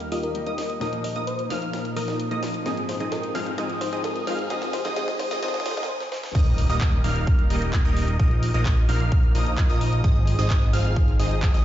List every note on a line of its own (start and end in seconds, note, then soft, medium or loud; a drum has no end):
0.00 0.79 D#2 medium
0.00 0.79 D#3 medium
0.00 0.34 G3 loud
0.00 0.35 A#3 medium
0.00 0.79 A#3 medium
0.00 0.35 D#4 medium
0.00 0.79 G4 medium
0.00 0.82 A#4 loud
0.00 closed hi-hat soft
0.00 riser medium
0.12 0.44 G3 medium
0.12 0.44 A#3 medium
0.12 0.44 D#4 medium
0.12 0.21 F4 medium
0.12 0.44 A#4 medium
0.12 0.44 D#5 medium
0.12 0.44 D#6 medium
0.12 open hi-hat loud
0.23 0.39 A#4 medium
0.23 closed hi-hat soft
0.34 0.78 G3 medium
0.34 0.78 A#3 medium
0.34 0.78 D#4 medium
0.34 0.79 D#5 medium
0.34 closed hi-hat medium
0.47 0.78 G3 medium
0.47 0.78 A#3 medium
0.47 0.78 D#4 medium
0.47 0.78 A#4 medium
0.47 0.78 D#5 loud
0.47 0.78 D#6 loud
0.47 closed hi-hat soft
0.58 snare medium
0.58 open hi-hat medium
0.70 closed hi-hat soft
0.80 1.47 A#2 loud
0.80 2.64 A#2 medium
0.80 1.47 F3 medium
0.80 1.13 F3 medium
0.80 4.47 F3 medium
0.80 1.48 A#3 medium
0.80 1.13 A#3 medium
0.80 1.13 D#4 medium
0.80 5.85 D#4 medium
0.80 1.48 D#4 medium
0.80 1.13 A#4 medium
0.80 2.64 A#4 medium
0.80 1.48 A#4 loud
0.80 1.13 D#5 medium
0.80 1.13 D#6 medium
0.80 snare medium
0.80 closed hi-hat medium
0.93 closed hi-hat soft
1.04 1.19 D#5 medium
1.04 open hi-hat loud
1.16 1.48 F3 medium
1.16 1.48 A#3 medium
1.16 1.48 D#4 medium
1.16 1.48 A#4 medium
1.16 1.48 D#5 loud
1.16 1.48 D#6 loud
1.16 closed hi-hat soft
1.27 1.42 C5 medium
1.27 closed hi-hat loud
1.39 closed hi-hat soft
1.49 2.62 A#2 medium
1.49 2.63 F3 medium
1.49 1.94 F3 medium
1.49 1.94 A#3 medium
1.49 2.63 A#3 medium
1.49 1.94 D#4 medium
1.49 2.63 D#4 medium
1.49 1.94 A#4 medium
1.49 2.64 A#4 medium
1.49 1.94 F5 loud
1.49 1.94 F6 loud
1.49 snare medium
1.49 open hi-hat medium
1.62 closed hi-hat soft
1.73 snare medium
1.73 closed hi-hat medium
1.85 closed hi-hat soft
1.96 2.28 F3 medium
1.96 2.28 A#3 medium
1.96 2.28 D#4 medium
1.96 2.43 A#4 medium
1.96 2.28 A#4 medium
1.96 2.28 D#5 medium
1.96 2.28 D#6 medium
1.96 open hi-hat loud
2.08 snare medium
2.08 closed hi-hat soft
2.20 closed hi-hat medium
2.31 2.63 F3 loud
2.31 2.63 A#3 medium
2.31 2.63 D#4 medium
2.31 2.63 A#4 medium
2.31 2.63 D#5 loud
2.31 2.63 D#6 loud
2.31 closed hi-hat soft
2.43 snare medium
2.43 open hi-hat medium
2.54 closed hi-hat soft
2.64 3.32 G#2 medium
2.64 5.86 G#2 medium
2.64 3.32 F3 medium
2.64 2.98 F3 medium
2.64 3.32 C4 medium
2.64 2.98 C4 medium
2.64 2.98 D#4 medium
2.64 3.32 D#4 medium
2.64 2.98 G#4 medium
2.64 3.33 G#4 medium
2.64 2.98 D#5 medium
2.64 4.48 G5 medium
2.64 2.98 D#6 medium
2.64 snare medium
2.64 closed hi-hat medium
2.77 closed hi-hat soft
2.89 3.04 C5 medium
2.89 snare medium
2.89 open hi-hat loud
3.00 3.32 F3 medium
3.00 3.32 C4 medium
3.00 3.32 D#4 medium
3.00 3.32 G#4 medium
3.00 3.32 D#5 loud
3.00 3.32 D#6 medium
3.00 closed hi-hat soft
3.12 3.46 A#4 medium
3.12 snare medium
3.12 closed hi-hat medium
3.23 closed hi-hat soft
3.34 3.55 G#2 medium
3.34 3.56 F3 medium
3.34 3.56 C4 medium
3.34 3.56 D#4 medium
3.34 3.56 G#4 medium
3.34 3.57 G#4 loud
3.34 3.56 F5 loud
3.34 3.56 F6 loud
3.34 snare medium
3.34 open hi-hat medium
3.46 closed hi-hat soft
3.57 4.24 G#2 medium
3.57 4.24 F3 medium
3.57 3.90 F3 medium
3.57 4.24 C4 medium
3.57 3.90 C4 medium
3.57 3.90 D#4 medium
3.57 4.25 D#4 medium
3.57 3.90 G#4 medium
3.57 4.25 G#4 medium
3.57 3.90 D#5 medium
3.57 3.90 D#6 medium
3.57 snare medium
3.57 closed hi-hat medium
3.70 closed hi-hat soft
3.81 3.96 C5 medium
3.81 snare medium
3.81 open hi-hat loud
3.93 4.25 F3 medium
3.93 4.25 C4 medium
3.93 4.25 D#4 medium
3.93 4.25 G#4 medium
3.93 4.25 D#5 loud
3.93 4.25 D#6 loud
3.93 closed hi-hat soft
4.04 4.39 A#4 medium
4.04 snare medium
4.04 closed hi-hat medium
4.16 closed hi-hat soft
4.26 4.47 G#2 medium
4.26 4.48 F3 medium
4.26 4.49 F3 medium
4.26 4.48 C4 medium
4.26 4.49 C4 medium
4.26 4.49 D#4 medium
4.26 4.49 G#4 medium
4.26 4.49 G#4 loud
4.26 4.49 F5 loud
4.26 4.48 F6 loud
4.26 snare medium
4.26 open hi-hat loud
4.39 closed hi-hat soft
4.49 4.94 G#2 medium
4.49 4.94 F3 medium
4.49 4.82 F3 medium
4.49 5.87 G#3 medium
4.49 4.95 C4 medium
4.49 5.87 C4 medium
4.49 4.82 C4 medium
4.49 4.82 D#4 medium
4.49 4.95 D#4 medium
4.49 4.82 G#4 medium
4.49 4.95 G#4 medium
4.49 4.82 D#5 medium
4.49 4.82 D#6 medium
4.49 snare medium
4.49 closed hi-hat medium
4.62 snare medium
4.62 closed hi-hat soft
4.73 4.89 C5 medium
4.73 snare loud
4.73 open hi-hat loud
4.85 4.95 F3 medium
4.85 4.95 C4 medium
4.85 4.95 D#4 medium
4.85 4.95 G#4 medium
4.85 4.95 D#5 loud
4.85 4.95 D#6 loud
4.85 snare medium
4.85 closed hi-hat soft
4.95 5.40 G#2 medium
4.95 5.41 F3 medium
4.95 5.28 F3 medium
4.95 5.28 C4 medium
4.95 5.41 C4 medium
4.95 5.28 D#4 medium
4.95 5.41 D#4 medium
4.95 5.28 G#4 medium
4.95 5.41 G#4 medium
4.95 5.28 D#5 medium
4.95 5.28 D#6 medium
4.95 snare loud
4.95 closed hi-hat medium
5.08 snare medium
5.08 closed hi-hat soft
5.19 5.35 C5 medium
5.19 snare medium
5.19 open hi-hat loud
5.31 5.41 F3 loud
5.31 5.41 C4 medium
5.31 5.41 D#4 medium
5.31 5.41 G#4 medium
5.31 5.41 D#5 loud
5.31 5.41 D#6 loud
5.31 snare medium
5.42 5.63 G#2 medium
5.42 5.64 F3 medium
5.42 5.64 C4 medium
5.42 5.64 D#4 medium
5.42 5.64 G#4 medium
5.42 5.58 C5 loud
5.42 5.64 D#5 medium
5.42 5.64 D#6 medium
5.42 snare loud
5.42 closed hi-hat medium
5.48 snare medium
5.54 snare medium
5.54 closed hi-hat soft
5.60 snare medium
5.65 5.86 G#2 medium
5.65 5.87 F3 medium
5.65 5.87 C4 medium
5.65 5.87 D#4 medium
5.65 5.87 G#4 medium
5.65 5.88 G#4 medium
5.65 5.81 C5 loud
5.65 5.87 D#5 loud
5.65 5.87 D#6 medium
5.65 snare loud
5.65 open hi-hat loud
5.71 snare medium
5.77 snare medium
5.77 closed hi-hat soft
5.83 snare loud
5.89 6.04 C5 medium
6.00 snare medium
6.12 6.27 C5 loud
6.12 snare medium
6.23 snare medium
6.35 6.67 D#1 loud
6.35 8.18 D#3 medium
6.35 6.67 G3 medium
6.35 6.67 A#3 medium
6.35 11.65 D#4 medium
6.35 6.67 D#4 medium
6.35 8.18 G4 medium
6.35 8.18 A#4 loud
6.35 6.67 A#4 medium
6.35 6.67 D#5 medium
6.35 6.67 D#6 loud
6.35 kick loud
6.35 closed hi-hat medium
6.35 crash loud
6.35 impact medium
6.47 closed hi-hat soft
6.58 open hi-hat loud
6.69 7.02 D#1 loud
6.69 7.01 G3 medium
6.69 7.01 A#3 medium
6.69 7.01 D#4 medium
6.69 7.01 A#4 medium
6.69 7.01 D#5 loud
6.69 7.01 D#6 loud
6.69 closed hi-hat medium
6.81 kick loud
6.81 clap loud
6.81 closed hi-hat medium
6.93 closed hi-hat soft
7.04 7.48 D#1 loud
7.04 7.48 G3 medium
7.04 7.48 A#3 medium
7.04 7.48 D#4 medium
7.04 7.48 A#4 medium
7.04 7.48 F5 loud
7.04 7.48 F6 loud
7.04 open hi-hat loud
7.16 closed hi-hat medium
7.27 kick loud
7.27 closed hi-hat medium
7.39 closed hi-hat soft
7.50 7.83 D#1 loud
7.50 7.82 G3 medium
7.50 7.82 A#3 medium
7.50 7.82 D#4 medium
7.50 7.82 A#4 medium
7.50 7.82 D#5 medium
7.50 7.82 D#6 medium
7.50 open hi-hat loud
7.62 closed hi-hat medium
7.73 kick loud
7.73 clap loud
7.73 closed hi-hat medium
7.85 8.17 D#1 loud
7.85 8.17 G3 loud
7.85 8.17 A#3 medium
7.85 8.17 D#4 medium
7.85 8.17 A#4 medium
7.85 8.17 D#5 loud
7.85 8.17 D#6 loud
7.85 closed hi-hat soft
7.97 open hi-hat loud
8.08 closed hi-hat medium
8.20 8.52 A#1 loud
8.20 10.02 F3 medium
8.20 8.51 F3 medium
8.20 10.02 A#3 medium
8.20 8.51 D#4 medium
8.20 8.51 A#4 medium
8.20 8.51 D#5 medium
8.20 8.51 D#6 medium
8.20 kick loud
8.20 closed hi-hat medium
8.31 closed hi-hat soft
8.43 open hi-hat loud
8.54 8.86 A#1 loud
8.54 8.86 F3 medium
8.54 8.86 A#3 medium
8.54 8.86 D#4 medium
8.54 8.86 A#4 medium
8.54 8.86 D#5 loud
8.54 8.86 D#6 loud
8.54 closed hi-hat medium
8.66 kick loud
8.66 clap loud
8.66 closed hi-hat medium
8.77 closed hi-hat soft
8.89 9.33 A#1 medium
8.89 9.32 F3 medium
8.89 9.32 A#3 medium
8.89 9.32 D#4 medium
8.89 9.32 A#4 medium
8.89 9.32 F5 loud
8.89 9.32 F6 loud
8.89 open hi-hat loud
9.00 closed hi-hat medium
9.12 kick loud
9.12 closed hi-hat medium
9.23 closed hi-hat soft
9.35 9.67 A#1 loud
9.35 9.67 F3 medium
9.35 9.67 A#3 medium
9.35 9.67 D#4 medium
9.35 9.67 A#4 medium
9.35 9.67 D#5 medium
9.35 9.67 D#6 medium
9.35 open hi-hat loud
9.46 closed hi-hat medium
9.58 kick loud
9.58 clap loud
9.58 closed hi-hat medium
9.69 10.02 A#1 medium
9.69 10.01 F3 loud
9.69 10.01 A#3 medium
9.69 10.01 D#4 medium
9.69 10.01 A#4 medium
9.69 10.01 D#5 loud
9.69 10.01 D#6 loud
9.69 closed hi-hat soft
9.81 open hi-hat loud
9.93 closed hi-hat medium
10.04 10.36 G#1 loud
10.04 10.36 F3 medium
10.04 11.65 F3 medium
10.04 11.65 G#3 medium
10.04 10.36 C4 medium
10.04 10.36 D#4 medium
10.04 10.36 G#4 medium
10.04 10.36 D#5 medium
10.04 10.36 D#6 medium
10.04 kick loud
10.04 closed hi-hat medium
10.16 closed hi-hat soft
10.27 open hi-hat loud
10.39 10.71 G#1 loud
10.39 10.71 F3 medium
10.39 10.71 C4 medium
10.39 10.71 D#4 medium
10.39 10.71 G#4 medium
10.39 10.71 D#5 loud
10.39 10.71 D#6 loud
10.39 closed hi-hat medium
10.50 kick loud
10.50 clap loud
10.50 closed hi-hat medium
10.62 closed hi-hat soft
10.73 11.17 G#1 loud
10.73 11.17 F3 loud
10.73 11.17 C4 medium
10.73 11.17 D#4 medium
10.73 11.17 G#4 medium
10.73 11.17 F5 loud
10.73 11.17 F6 loud
10.73 open hi-hat loud
10.85 closed hi-hat medium
10.96 kick loud
10.96 closed hi-hat medium
11.08 closed hi-hat soft
11.20 11.52 G#1 medium
11.20 11.51 F3 medium
11.20 11.51 C4 medium
11.20 11.51 D#4 medium
11.20 11.51 G#4 medium
11.20 11.51 D#5 medium
11.20 11.51 D#6 medium
11.20 open hi-hat loud
11.31 closed hi-hat medium
11.42 kick loud
11.42 clap loud
11.42 closed hi-hat medium
11.54 11.65 G#1 loud
11.54 11.65 F3 medium
11.54 11.65 C4 medium
11.54 11.65 D#4 medium
11.54 11.65 G#4 medium
11.54 11.65 D#5 loud
11.54 11.65 D#6 loud
11.54 closed hi-hat soft